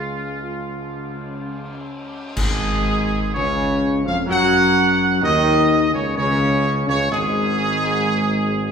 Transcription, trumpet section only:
0.00 1.84 F4 medium
2.37 3.31 G#4 loud
3.34 4.02 C#5 loud
4.06 4.17 F5 loud
4.30 5.19 F#5 loud
5.24 5.90 D#5 loud
5.95 6.17 C#5 medium
6.18 6.84 C#5 loud
6.89 7.11 C#5 loud
7.12 8.72 G#4 loud

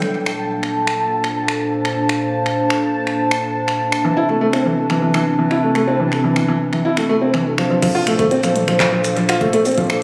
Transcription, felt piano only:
4.05 4.12 E3 medium
4.17 4.24 E4 loud
4.29 4.33 A3 medium
4.41 4.45 A3 loud
4.53 4.61 C4 medium
4.65 4.73 E3 medium
4.90 5.01 E3 medium
5.02 5.09 E3 medium
5.14 5.21 E3 loud
5.39 5.46 E3 medium
5.51 5.58 E4 loud
5.63 5.67 A3 medium
5.75 5.80 A3 medium
5.87 5.95 C4 medium
6.00 6.07 E3 medium
6.24 6.35 E3 medium
6.36 6.43 E3 medium
6.48 6.56 E3 loud
6.73 6.80 E3 medium
6.85 6.92 E4 loud
6.97 7.02 A3 medium
7.09 7.14 A3 loud
7.22 7.29 C4 medium
7.34 7.41 E3 medium
7.58 7.69 F3 medium
7.70 7.78 F3 medium
7.83 7.90 F3 medium
7.95 8.02 F4 loud
8.07 8.11 A3 medium
8.19 8.23 A3 loud
8.31 8.39 C4 medium
8.44 8.51 F3 medium
8.68 8.79 F3 medium
8.80 8.87 F3 medium
8.92 9.00 F3 medium
9.17 9.24 F3 medium
9.29 9.36 F4 loud
9.41 9.45 A3 medium
9.53 9.58 A3 loud
9.65 9.73 C4 medium
9.78 9.85 F3 medium

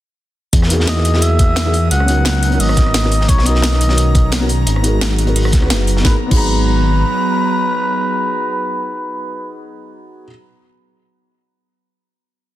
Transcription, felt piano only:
0.67 1.09 A#3 medium
0.67 1.11 D#4 medium
0.67 1.12 E4 medium
0.72 1.13 F#4 medium
0.72 1.13 G#4 medium
1.11 1.62 A#3 medium
1.11 1.63 B3 medium
1.11 1.64 E4 medium
1.16 1.64 F#4 medium
1.16 1.65 G#4 medium
1.64 1.71 A#3 medium
1.64 1.71 D#4 medium
1.64 1.72 E4 medium
1.64 1.72 F#4 medium
1.64 1.73 G#4 medium
2.05 2.47 B3 medium
2.05 2.49 C#4 medium
2.05 2.50 D#4 medium
2.10 2.51 F#4 medium
2.10 2.52 A#4 medium
2.49 3.00 B3 medium
2.49 3.01 C#4 medium
2.49 3.02 D#4 medium
2.54 3.02 F#4 medium
2.54 3.03 A#4 medium
3.02 3.09 B3 medium
3.02 3.09 C#4 medium
3.02 3.10 D#4 medium
3.02 3.10 F#4 medium
3.02 3.11 A#4 medium
3.43 3.85 B3 medium
3.43 3.87 C#4 medium
3.43 3.88 D#4 medium
3.48 3.89 F#4 medium
3.48 3.89 A#4 medium
3.86 4.38 B3 medium
3.86 4.39 C#4 medium
3.86 4.40 D#4 medium
3.92 4.40 F#4 medium
3.92 4.41 A#4 medium
4.40 4.47 B3 medium
4.40 4.47 C#4 medium
4.40 4.48 D#4 medium
4.40 4.48 F#4 medium
4.40 4.48 A#4 medium
4.81 5.24 B3 medium
4.81 5.25 D#4 medium
4.81 5.26 F#4 medium
4.86 5.27 G#4 medium
4.86 5.27 A#4 medium
5.26 5.58 B3 medium
5.26 5.59 D#4 medium
5.26 5.61 F#4 medium
5.26 5.61 G#4 medium
5.26 5.61 A#4 medium
5.59 5.98 B3 medium
5.59 6.01 D#4 medium
5.59 6.03 F#4 medium
5.64 6.05 G#4 medium
5.64 6.06 B4 medium
6.00 6.12 B3 medium
6.00 6.14 D#4 medium
6.05 6.15 F#4 medium
6.05 6.16 G#4 medium
6.10 6.18 A#4 medium
6.27 10.24 B3 medium
6.27 10.26 D#4 medium
6.32 10.27 F#4 medium
6.32 10.28 G#4 medium
6.37 10.29 A#5 loud

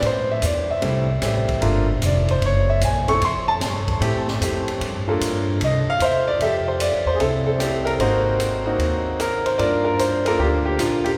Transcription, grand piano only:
0.06 0.30 C5 medium
0.32 0.43 E5 medium
0.45 0.70 D5 medium
0.71 1.59 E5 medium
0.82 1.06 G3 medium
0.82 1.06 A3 medium
0.82 1.06 C4 medium
0.82 1.06 E4 medium
1.22 1.62 G3 medium
1.22 1.59 A3 soft
1.22 1.62 C4 medium
1.22 1.62 G4 medium
1.61 1.85 A3 medium
1.61 1.85 A#3 medium
1.61 1.86 D4 medium
1.61 1.86 F4 medium
2.06 2.30 D5 medium
2.31 2.42 C5 medium
2.46 2.69 C#5 medium
2.70 2.82 E5 medium
2.85 3.09 G#5 medium
3.08 3.20 A3 medium
3.08 3.20 C4 medium
3.08 3.20 E4 medium
3.08 3.20 A4 medium
3.08 3.21 C#6 loud
3.25 3.49 C6 medium
3.48 3.56 A5 medium
4.01 4.25 A3 medium
4.01 4.25 C4 medium
4.01 4.25 E4 medium
4.01 4.25 G4 medium
4.40 4.80 A3 medium
4.40 4.81 C4 medium
4.40 4.81 E4 soft
4.40 4.81 G4 medium
5.08 5.58 A#3 medium
5.08 5.58 D4 medium
5.08 5.58 F4 medium
5.08 5.58 A4 medium
5.64 5.88 D#5 medium
5.90 6.01 F5 loud
6.02 6.28 C5 medium
6.02 6.19 E5 medium
6.28 6.41 D5 loud
6.42 7.17 G4 medium
6.42 7.17 A4 medium
6.42 6.66 E5 loud
6.68 6.80 C5 medium
6.81 7.08 D5 medium
7.07 7.17 C5 medium
7.15 7.19 G#4 medium
7.20 7.58 C4 medium
7.20 7.58 E4 medium
7.20 7.45 A4 medium
7.47 7.52 A4 medium
7.58 7.99 A3 medium
7.58 7.98 C4 soft
7.58 8.00 E4 soft
7.58 8.00 G4 medium
7.85 7.90 A#4 medium
7.99 8.61 A#3 medium
7.99 8.61 C4 medium
7.99 8.61 D#4 medium
7.99 8.61 F#4 medium
7.99 9.23 C5 medium
8.66 9.16 A#3 medium
8.66 9.17 C4 medium
8.66 9.17 D#4 medium
8.66 9.17 F#4 medium
9.20 9.47 A#4 medium
9.46 9.59 C5 medium
9.58 10.20 A#3 medium
9.58 10.20 D4 medium
9.58 10.20 F4 medium
9.58 9.83 A#4 medium
9.58 9.83 D5 medium
9.85 9.99 A#4 medium
10.00 10.24 C5 medium
10.25 10.40 A#3 medium
10.25 10.40 D4 medium
10.25 10.77 F4 medium
10.25 10.77 A4 medium
10.25 10.38 A#4 medium
10.39 11.16 A#3 medium
10.39 11.16 D4 medium
10.39 10.45 G4 medium
10.66 10.79 G4 medium
10.79 11.06 F4 medium
11.04 11.09 G4 medium

